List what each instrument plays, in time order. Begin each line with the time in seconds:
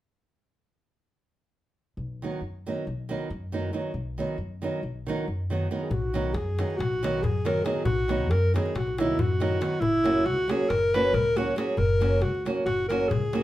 1.97 upright bass B1
2.22 nylon-string guitar D#3 F#3 B3 D#4
2.41 upright bass F#2
2.67 nylon-string guitar D#3 F#3 B3 D#4
2.87 upright bass B1
3.09 nylon-string guitar D#3 F#3 B3 D#4
3.30 upright bass F#2
3.52 nylon-string guitar D#3 F#3 B3 D#4
3.73 nylon-string guitar D#3 F#3 B3 D#4
3.94 upright bass B1
4.18 nylon-string guitar D#3 F#3 B3 D#4
4.38 upright bass F#2
4.62 nylon-string guitar D#3 F#3 B3 D#4
4.83 upright bass B1
5.07 nylon-string guitar D#3 F#3 B3 D#4
5.28 upright bass F#2
5.50 nylon-string guitar D#3 F#3 B3 D#4
5.71 nylon-string guitar D#3 F#3 B3 D#4
5.83 alto saxophone G#4
5.91 upright bass B1, alto saxophone F#4, darbuka dum
6.14 nylon-string guitar D#3 F#3 B3 D#4, darbuka tek
6.25 darbuka tek
6.33 upright bass F#2, alto saxophone G#4, darbuka tek
6.59 nylon-string guitar D#3 F#3 B3 D#4, darbuka tek
6.70 darbuka tek
6.77 upright bass B1, alto saxophone F#4, darbuka tek, darbuka dum
6.93 darbuka tek
7.03 nylon-string guitar D#3 F#3 B3 D#4, darbuka tek
7.15 darbuka tek
7.22 upright bass F#2, alto saxophone G#4, darbuka dum
7.45 nylon-string guitar D#3 F#3 B3 D#4, alto saxophone A#4, darbuka tek
7.57 darbuka tek
7.64 nylon-string guitar D#3 F#3 B3 D#4, alto saxophone G#4, darbuka tek
7.76 darbuka tek
7.85 upright bass B1, alto saxophone F#4, darbuka dum
8.08 nylon-string guitar D#3 F#3 B3 D#4, darbuka tek
8.21 darbuka tek
8.29 upright bass F#2, alto saxophone A#4, darbuka tek
8.54 nylon-string guitar D#3 F#3 B3 D#4, alto saxophone G#4, darbuka tek
8.66 darbuka tek
8.75 upright bass B1, alto saxophone F#4, darbuka tek, darbuka dum
8.87 darbuka tek
8.98 nylon-string guitar D#3 F#3 B3 D#4, alto saxophone E4, darbuka tek
9.09 darbuka tek
9.19 upright bass F#2, alto saxophone F#4, darbuka dum
9.40 nylon-string guitar D#3 F#3 B3 D#4, darbuka tek
9.52 darbuka tek
9.61 nylon-string guitar D#3 F#3 B3 D#4, darbuka tek
9.72 darbuka tek
9.80 upright bass F#1, alto saxophone E4, darbuka dum
10.04 nylon-string guitar F#3 A#3 C#4 F#4, darbuka tek
10.16 darbuka tek
10.26 upright bass C#2, alto saxophone F#4, darbuka tek
10.48 nylon-string guitar F#3 A#3 C#4 F#4, alto saxophone G#4, darbuka tek
10.60 darbuka tek
10.69 upright bass F#1, alto saxophone A#4, darbuka tek, darbuka dum
10.83 darbuka tek
10.94 nylon-string guitar F#3 A#3 C#4 F#4, alto saxophone B4, darbuka tek
11.04 darbuka tek
11.13 upright bass C#2, alto saxophone A#4, darbuka dum
11.36 nylon-string guitar F#3 A#3 C#4 F#4, alto saxophone F#4, darbuka tek
11.47 darbuka tek
11.56 nylon-string guitar F#3 A#3 C#4 F#4, alto saxophone G#4, darbuka tek
11.67 darbuka tek
11.77 upright bass F#1, alto saxophone A#4, darbuka dum
11.90 darbuka tek
12.00 nylon-string guitar F#3 A#3 C#4 F#4, darbuka tek
12.12 darbuka tek
12.21 upright bass C#2, alto saxophone F#4, darbuka tek
12.35 darbuka tek
12.45 nylon-string guitar F#3 A#3 C#4 F#4, darbuka tek
12.57 darbuka tek
12.65 upright bass F#1, alto saxophone F#4, darbuka tek, darbuka dum
12.79 darbuka tek
12.88 nylon-string guitar F#3 A#3 C#4 F#4, alto saxophone A#4, darbuka tek
13.01 darbuka tek
13.08 upright bass C#2, alto saxophone G#4, darbuka dum
13.22 darbuka tek
13.33 nylon-string guitar F#3 A#3 C#4 F#4, darbuka tek